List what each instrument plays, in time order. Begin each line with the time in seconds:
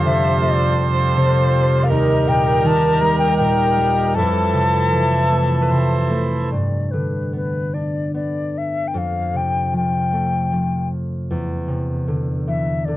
Already playing: harp F2 A3 B3 D4, harmonium G3 F4 A4, viola C5
0.05 harp C3, flute E5
0.41 harp A3, flute D5
0.78 harp C4
1.16 harp C3, flute C5
1.52 harp C4
1.83 flute F5
1.88 harp D#2, harmonium D#4 A#4, viola A#4, flute D#5
2.26 harp A#2, flute G5
2.64 harp D#3, flute A5
3.01 harp G3, flute A#5
3.19 flute G5
3.38 harp A#2, flute G5
3.79 harp G3
4.15 harp F2, harmonium E3 E4 A4, viola A4, flute A5
4.53 harp C3
4.92 harp E3
5.31 harp A3
5.62 viola B4
5.71 harp C3, viola C5
6.10 harp A3
6.51 harp G2, flute D5
6.91 harp D3, flute B4
7.33 harp B3, flute B4
7.74 harp D4, flute D5
8.14 harp B3, flute D5
8.58 flute E5
8.88 flute G5
8.94 harp F2, flute F5
9.33 harp C3, flute G5
9.73 harp F3, flute G5
10.13 harp A3
10.52 harp F3
11.31 harp E2
11.68 harp C3
12.08 harp D3
12.48 harp E3, flute E5
12.85 harp D3, flute D5